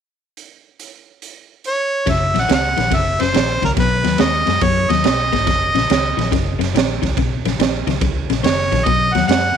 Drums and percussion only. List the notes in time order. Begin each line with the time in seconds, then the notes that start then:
0.37 closed hi-hat
0.80 closed hi-hat
1.22 closed hi-hat
1.64 closed hi-hat
2.07 kick, snare, ride
2.36 snare, ride
2.49 snare, ride
2.77 snare, ride
2.91 kick, snare, ride
3.20 snare, ride
3.34 snare, ride
3.62 kick, snare, ride
3.77 kick, snare, ride
4.04 snare, ride
4.18 snare, ride
4.47 snare, ride
4.61 kick, ride
4.90 snare, ride
5.04 snare, ride
5.33 kick, snare, ride
5.47 kick, snare, ride
5.75 snare, ride
5.90 snare, ride
6.19 snare, ride
6.32 kick, snare, ride
6.61 snare, ride
6.76 snare, ride
7.03 kick, snare, ride
7.17 kick, ride
7.45 snare, ride
7.60 snare, ride
7.87 snare, ride
8.01 kick, ride
8.30 snare, ride
8.44 snare, ride
8.72 kick, snare, ride
8.86 kick, ride
9.15 snare, ride
9.29 snare, ride